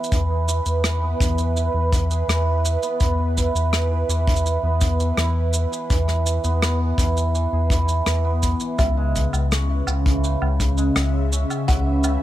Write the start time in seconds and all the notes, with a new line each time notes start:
Already playing: E3 B3 E4 G#4 B4
0.04 shaker
0.12 E2 E3, kick, shaker
0.30 G#4
0.48 E3, shaker
0.66 E2, shaker
0.84 E3, cross-stick, shaker
1.02 B3
1.20 E2, kick, shaker
1.38 E3, shaker
1.56 E4, shaker
1.74 E2
1.92 E3, kick, shaker
2.10 G#4, shaker
2.28 E2 E3, cross-stick, shaker
2.65 E3, shaker
2.83 B3, shaker
3.00 E2, kick, shaker
3.19 E3
3.37 E4, kick, shaker
3.55 E2, shaker
3.73 E3, cross-stick, shaker
3.91 G#4
4.09 E2 E3, shaker
4.27 kick
4.36 shaker
4.45 E3, shaker
4.63 E2 B3
4.81 kick, shaker
4.99 E3, shaker
5.17 E2 E4, cross-stick
5.53 E3, shaker
5.71 G#4, shaker
5.90 E2 E3, kick, shaker
6.08 cross-stick
6.26 E3, shaker
6.44 E2 B3, shaker
6.62 cross-stick, shaker
6.80 E3
6.98 E2 E4, kick, shaker
7.17 shaker
7.34 E3, shaker
7.53 E2 G#4
7.70 E3, kick, shaker
7.88 shaker
8.06 E2 E3, cross-stick, shaker
8.25 B3
8.43 kick, shaker
8.60 E3, shaker
8.79 C#2 C#3 E5, kick, low woodblock, shaker
8.97 G#3
9.16 kick, shaker
9.33 C#2 C#3, low woodblock, shaker
9.51 C#4, cross-stick, shaker
9.87 C#2 C#3 C#4, low woodblock, shaker
10.05 E3, kick
10.24 C#3, shaker
10.42 C#2, low woodblock
10.59 C#3, kick, shaker
10.78 G#3, shaker
10.87 E5
10.96 C#2, cross-stick, low woodblock, shaker
11.14 C#3
11.32 C#4, shaker
11.50 low woodblock, shaker
11.68 C#2 C#3 F#5, kick, shaker
11.86 E3
12.04 C#3, low woodblock, shaker